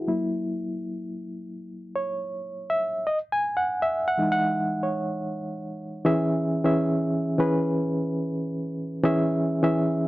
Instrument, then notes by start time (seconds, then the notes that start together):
reed electric piano
Already playing: G#4 B4
0.08 F#3 A#3 E4
1.96 C#5
2.70 E5
3.07 D#5
3.32 G#5
3.57 F#5
3.82 E5
4.08 F#5
4.18 E3 G#3 D#4
4.32 F#5
4.83 C#5
6.04 E3 C#4 G#4 E5
6.64 E3 C#4 G#4 E5
7.38 E3 C#4 G#4 B4
9.03 E3 C#4 G#4 E5
9.63 E3 C#4 G#4 E5